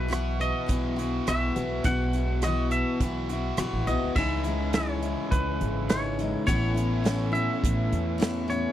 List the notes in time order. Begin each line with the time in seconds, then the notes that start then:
Already playing: B1 B2 B3 E4 B4
0.08 B2 E3 B3 E4 F#4, closed hi-hat
0.13 cross-stick
0.40 B3 D#5, closed hi-hat
0.66 B1 E3 B3 E4 F#4, kick, closed hi-hat
0.96 B3 E4 F#4, closed hi-hat
1.27 B1 B2 E3 B3 E4 F#4 E5, cross-stick, closed hi-hat
1.56 B1 B3 E4 F#4, closed hi-hat
1.84 B1 B2 E3 B3 E4 F#4 F#5, kick, closed hi-hat
2.13 E4 F#4, closed hi-hat
2.18 B3
2.42 B2 E3 D#5, cross-stick, closed hi-hat
2.46 B3 E4 F#4
2.70 B3 E5, closed hi-hat
3.00 B1 E3 B3 E4, kick, closed hi-hat
3.04 F#4
3.29 B3 E4 F#4, closed hi-hat
3.57 B1 B2 E3 B3 E4 F#4, cross-stick, closed hi-hat
3.73 A1
3.87 B1 B3 E4 F#4 D#5, closed hi-hat
4.03 C#2
4.16 C#2 C#3 E3 G#3 C#4 D#4 E4 E5, kick, crash
4.44 G#3 D#4 E4, closed hi-hat
4.73 E3 G#3 D#4 C#5, snare, closed hi-hat
4.78 E4
5.02 G#3 E4, closed hi-hat
5.31 C#2 B4, kick, closed hi-hat
5.61 G#1, closed hi-hat
5.89 E3 G#3 D#4 E4 C#5, snare, closed hi-hat
6.19 G#3 D#4 E4, closed hi-hat
6.46 A1 A2 E3 A3 B3 C#4 E4 C#5, kick, closed hi-hat
6.74 B3 C#4 E4, closed hi-hat
7.04 E3 B3 C#4 E4, snare, closed hi-hat
7.32 B3 C#4 E4 E5, closed hi-hat
7.64 A1, kick, closed hi-hat
7.92 E2, closed hi-hat
8.18 E3 B3 C#4 E4, closed hi-hat
8.22 snare
8.48 B3 C#4 E4 C#5, closed hi-hat